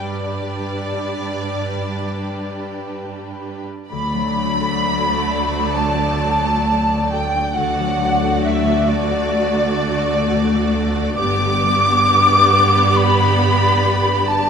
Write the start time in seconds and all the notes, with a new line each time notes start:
Already playing: D5
0.00 G2 G3 D4 G4 B4
3.89 D2 D3 F#3 A3 D5 B5
4.14 F#3
4.37 D4
4.61 A4
5.05 D5
5.29 A5
5.73 A5
6.20 A5
6.67 D5
7.11 A4 G5
7.35 D4
7.55 D2 D3 A3 F#4 D5 F#5
7.80 F#3
8.02 D4
8.23 A4
8.44 F#4 E5
8.68 D5
8.88 D5 A5
9.11 F#5
9.32 A5
9.55 F#5
9.78 A5
10.01 F#5
10.24 D5
10.46 F#4
10.70 A4
10.93 D4
11.17 G1 G2 B3 G4 D5 D6
11.40 D3
11.64 G3
11.86 D4
12.08 B4
12.30 G4
12.53 D5
12.75 B5
12.96 D5 B5
13.18 B5
13.40 D5
13.63 B5
13.85 G4
14.06 B4
14.28 D4 A5